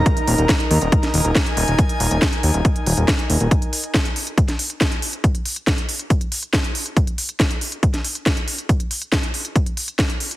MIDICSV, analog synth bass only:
0, 0, Header, 1, 2, 480
1, 0, Start_track
1, 0, Tempo, 431655
1, 66, Time_signature, 4, 2, 24, 8
1, 11528, End_track
2, 0, Start_track
2, 0, Title_t, "Analog synth bass"
2, 0, Program_c, 0, 38
2, 306, Note_on_c, 0, 27, 96
2, 391, Note_off_c, 0, 27, 0
2, 426, Note_on_c, 0, 27, 80
2, 511, Note_off_c, 0, 27, 0
2, 786, Note_on_c, 0, 39, 98
2, 871, Note_off_c, 0, 39, 0
2, 906, Note_on_c, 0, 27, 82
2, 991, Note_off_c, 0, 27, 0
2, 1266, Note_on_c, 0, 27, 95
2, 1351, Note_off_c, 0, 27, 0
2, 1387, Note_on_c, 0, 27, 84
2, 1471, Note_off_c, 0, 27, 0
2, 1746, Note_on_c, 0, 27, 95
2, 1831, Note_off_c, 0, 27, 0
2, 1866, Note_on_c, 0, 27, 83
2, 1951, Note_off_c, 0, 27, 0
2, 2226, Note_on_c, 0, 27, 97
2, 2311, Note_off_c, 0, 27, 0
2, 2346, Note_on_c, 0, 27, 82
2, 2431, Note_off_c, 0, 27, 0
2, 2706, Note_on_c, 0, 39, 96
2, 2791, Note_off_c, 0, 39, 0
2, 2826, Note_on_c, 0, 27, 82
2, 2911, Note_off_c, 0, 27, 0
2, 3186, Note_on_c, 0, 27, 95
2, 3271, Note_off_c, 0, 27, 0
2, 3306, Note_on_c, 0, 27, 82
2, 3391, Note_off_c, 0, 27, 0
2, 3666, Note_on_c, 0, 27, 91
2, 3751, Note_off_c, 0, 27, 0
2, 3786, Note_on_c, 0, 27, 82
2, 3871, Note_off_c, 0, 27, 0
2, 11528, End_track
0, 0, End_of_file